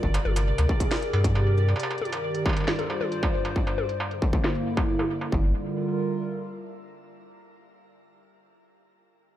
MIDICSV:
0, 0, Header, 1, 6, 480
1, 0, Start_track
1, 0, Tempo, 441176
1, 33, Time_signature, 4, 2, 24, 8
1, 10193, End_track
2, 0, Start_track
2, 0, Title_t, "Synth texture"
2, 0, Program_c, 0, 99
2, 0, Note_on_c, 0, 74, 83
2, 5803, Note_off_c, 0, 74, 0
2, 10193, End_track
3, 0, Start_track
3, 0, Title_t, "Analog synth pad"
3, 0, Program_c, 1, 89
3, 0, Note_on_c, 1, 65, 86
3, 0, Note_on_c, 1, 70, 76
3, 33, Note_on_c, 1, 48, 71
3, 338, Note_on_c, 1, 67, 93
3, 471, Note_on_c, 1, 68, 89
3, 728, Note_off_c, 1, 65, 0
3, 1953, Note_off_c, 1, 48, 0
3, 1954, Note_off_c, 1, 68, 0
3, 1954, Note_on_c, 1, 43, 91
3, 2162, Note_on_c, 1, 51, 84
3, 2571, Note_on_c, 1, 72, 95
3, 2580, Note_on_c, 1, 55, 83
3, 2721, Note_off_c, 1, 67, 0
3, 2721, Note_off_c, 1, 70, 0
3, 3873, Note_off_c, 1, 55, 0
3, 3874, Note_off_c, 1, 51, 0
3, 4174, Note_on_c, 1, 50, 77
3, 4308, Note_on_c, 1, 58, 85
3, 5781, Note_off_c, 1, 50, 0
3, 5793, Note_off_c, 1, 58, 0
3, 5793, Note_off_c, 1, 72, 0
3, 5794, Note_off_c, 1, 43, 0
3, 5794, Note_on_c, 1, 50, 83
3, 5865, Note_on_c, 1, 55, 84
3, 5937, Note_on_c, 1, 65, 83
3, 6008, Note_on_c, 1, 70, 82
3, 7669, Note_off_c, 1, 55, 0
3, 7669, Note_off_c, 1, 65, 0
3, 7669, Note_off_c, 1, 70, 0
3, 7670, Note_off_c, 1, 50, 0
3, 10193, End_track
4, 0, Start_track
4, 0, Title_t, "Sub bass"
4, 0, Program_c, 2, 38
4, 33, Note_on_c, 2, 31, 93
4, 198, Note_off_c, 2, 31, 0
4, 274, Note_on_c, 2, 31, 87
4, 573, Note_off_c, 2, 31, 0
4, 634, Note_on_c, 2, 38, 94
4, 716, Note_off_c, 2, 38, 0
4, 1232, Note_on_c, 2, 43, 100
4, 1893, Note_off_c, 2, 43, 0
4, 5793, Note_on_c, 2, 31, 94
4, 6016, Note_off_c, 2, 31, 0
4, 10193, End_track
5, 0, Start_track
5, 0, Title_t, "Struck metal"
5, 154, Note_on_c, 9, 60, 73
5, 263, Note_off_c, 9, 60, 0
5, 394, Note_on_c, 9, 60, 53
5, 503, Note_off_c, 9, 60, 0
5, 634, Note_on_c, 9, 60, 54
5, 743, Note_off_c, 9, 60, 0
5, 994, Note_on_c, 9, 60, 74
5, 1103, Note_off_c, 9, 60, 0
5, 1234, Note_on_c, 9, 60, 55
5, 1343, Note_off_c, 9, 60, 0
5, 1473, Note_on_c, 9, 60, 53
5, 1582, Note_off_c, 9, 60, 0
5, 1833, Note_on_c, 9, 60, 34
5, 1913, Note_off_c, 9, 60, 0
5, 1913, Note_on_c, 9, 60, 49
5, 1994, Note_off_c, 9, 60, 0
5, 1994, Note_on_c, 9, 60, 61
5, 2073, Note_off_c, 9, 60, 0
5, 2073, Note_on_c, 9, 60, 47
5, 2182, Note_off_c, 9, 60, 0
5, 2313, Note_on_c, 9, 60, 51
5, 2421, Note_off_c, 9, 60, 0
5, 2673, Note_on_c, 9, 60, 74
5, 2712, Note_off_c, 9, 60, 0
5, 2712, Note_on_c, 9, 60, 58
5, 2752, Note_off_c, 9, 60, 0
5, 2752, Note_on_c, 9, 60, 46
5, 2792, Note_off_c, 9, 60, 0
5, 2792, Note_on_c, 9, 60, 39
5, 2832, Note_off_c, 9, 60, 0
5, 2832, Note_on_c, 9, 60, 31
5, 2872, Note_off_c, 9, 60, 0
5, 2872, Note_on_c, 9, 60, 25
5, 2913, Note_off_c, 9, 60, 0
5, 2913, Note_on_c, 9, 60, 49
5, 3022, Note_off_c, 9, 60, 0
5, 3153, Note_on_c, 9, 60, 50
5, 3262, Note_off_c, 9, 60, 0
5, 3512, Note_on_c, 9, 60, 73
5, 3621, Note_off_c, 9, 60, 0
5, 3752, Note_on_c, 9, 60, 49
5, 3861, Note_off_c, 9, 60, 0
5, 3992, Note_on_c, 9, 60, 44
5, 4101, Note_off_c, 9, 60, 0
5, 4353, Note_on_c, 9, 60, 76
5, 4462, Note_off_c, 9, 60, 0
5, 4833, Note_on_c, 9, 60, 49
5, 4942, Note_off_c, 9, 60, 0
5, 5192, Note_on_c, 9, 60, 77
5, 5301, Note_off_c, 9, 60, 0
5, 5432, Note_on_c, 9, 60, 47
5, 5541, Note_off_c, 9, 60, 0
5, 5672, Note_on_c, 9, 60, 48
5, 5780, Note_off_c, 9, 60, 0
5, 10193, End_track
6, 0, Start_track
6, 0, Title_t, "Drums"
6, 33, Note_on_c, 9, 36, 83
6, 142, Note_off_c, 9, 36, 0
6, 154, Note_on_c, 9, 42, 50
6, 263, Note_off_c, 9, 42, 0
6, 274, Note_on_c, 9, 48, 89
6, 383, Note_off_c, 9, 48, 0
6, 394, Note_on_c, 9, 42, 72
6, 503, Note_off_c, 9, 42, 0
6, 634, Note_on_c, 9, 42, 54
6, 743, Note_off_c, 9, 42, 0
6, 753, Note_on_c, 9, 36, 109
6, 862, Note_off_c, 9, 36, 0
6, 873, Note_on_c, 9, 36, 102
6, 874, Note_on_c, 9, 42, 65
6, 982, Note_off_c, 9, 36, 0
6, 983, Note_off_c, 9, 42, 0
6, 994, Note_on_c, 9, 38, 119
6, 1103, Note_off_c, 9, 38, 0
6, 1114, Note_on_c, 9, 42, 37
6, 1223, Note_off_c, 9, 42, 0
6, 1353, Note_on_c, 9, 36, 121
6, 1353, Note_on_c, 9, 42, 68
6, 1462, Note_off_c, 9, 36, 0
6, 1462, Note_off_c, 9, 42, 0
6, 1714, Note_on_c, 9, 82, 76
6, 1823, Note_off_c, 9, 82, 0
6, 1953, Note_on_c, 9, 42, 70
6, 2062, Note_off_c, 9, 42, 0
6, 2073, Note_on_c, 9, 42, 21
6, 2153, Note_off_c, 9, 42, 0
6, 2153, Note_on_c, 9, 42, 29
6, 2193, Note_on_c, 9, 48, 85
6, 2233, Note_off_c, 9, 42, 0
6, 2233, Note_on_c, 9, 42, 42
6, 2302, Note_off_c, 9, 48, 0
6, 2313, Note_off_c, 9, 42, 0
6, 2313, Note_on_c, 9, 42, 67
6, 2421, Note_off_c, 9, 42, 0
6, 2552, Note_on_c, 9, 42, 54
6, 2661, Note_off_c, 9, 42, 0
6, 2673, Note_on_c, 9, 36, 110
6, 2782, Note_off_c, 9, 36, 0
6, 2792, Note_on_c, 9, 42, 64
6, 2901, Note_off_c, 9, 42, 0
6, 2913, Note_on_c, 9, 38, 117
6, 3022, Note_off_c, 9, 38, 0
6, 3033, Note_on_c, 9, 42, 40
6, 3033, Note_on_c, 9, 48, 83
6, 3033, Note_on_c, 9, 82, 60
6, 3063, Note_off_c, 9, 48, 0
6, 3063, Note_on_c, 9, 48, 67
6, 3093, Note_off_c, 9, 48, 0
6, 3093, Note_on_c, 9, 48, 59
6, 3123, Note_off_c, 9, 48, 0
6, 3123, Note_on_c, 9, 48, 48
6, 3141, Note_off_c, 9, 42, 0
6, 3141, Note_off_c, 9, 82, 0
6, 3153, Note_off_c, 9, 48, 0
6, 3153, Note_on_c, 9, 48, 38
6, 3184, Note_off_c, 9, 48, 0
6, 3184, Note_on_c, 9, 48, 30
6, 3213, Note_off_c, 9, 48, 0
6, 3213, Note_on_c, 9, 48, 25
6, 3244, Note_off_c, 9, 48, 0
6, 3244, Note_on_c, 9, 48, 21
6, 3273, Note_off_c, 9, 48, 0
6, 3273, Note_on_c, 9, 48, 87
6, 3382, Note_off_c, 9, 48, 0
6, 3393, Note_on_c, 9, 42, 63
6, 3501, Note_off_c, 9, 42, 0
6, 3512, Note_on_c, 9, 36, 107
6, 3621, Note_off_c, 9, 36, 0
6, 3752, Note_on_c, 9, 42, 63
6, 3861, Note_off_c, 9, 42, 0
6, 3872, Note_on_c, 9, 36, 89
6, 3981, Note_off_c, 9, 36, 0
6, 3992, Note_on_c, 9, 42, 46
6, 4101, Note_off_c, 9, 42, 0
6, 4113, Note_on_c, 9, 48, 89
6, 4221, Note_off_c, 9, 48, 0
6, 4233, Note_on_c, 9, 42, 69
6, 4342, Note_off_c, 9, 42, 0
6, 4473, Note_on_c, 9, 42, 50
6, 4582, Note_off_c, 9, 42, 0
6, 4592, Note_on_c, 9, 36, 112
6, 4701, Note_off_c, 9, 36, 0
6, 4712, Note_on_c, 9, 36, 105
6, 4821, Note_off_c, 9, 36, 0
6, 4833, Note_on_c, 9, 38, 117
6, 4942, Note_off_c, 9, 38, 0
6, 4952, Note_on_c, 9, 42, 37
6, 5061, Note_off_c, 9, 42, 0
6, 5192, Note_on_c, 9, 36, 123
6, 5192, Note_on_c, 9, 42, 63
6, 5301, Note_off_c, 9, 36, 0
6, 5301, Note_off_c, 9, 42, 0
6, 5432, Note_on_c, 9, 48, 78
6, 5541, Note_off_c, 9, 48, 0
6, 5552, Note_on_c, 9, 82, 86
6, 5660, Note_off_c, 9, 82, 0
6, 5672, Note_on_c, 9, 42, 63
6, 5780, Note_off_c, 9, 42, 0
6, 5793, Note_on_c, 9, 36, 114
6, 5902, Note_off_c, 9, 36, 0
6, 10193, End_track
0, 0, End_of_file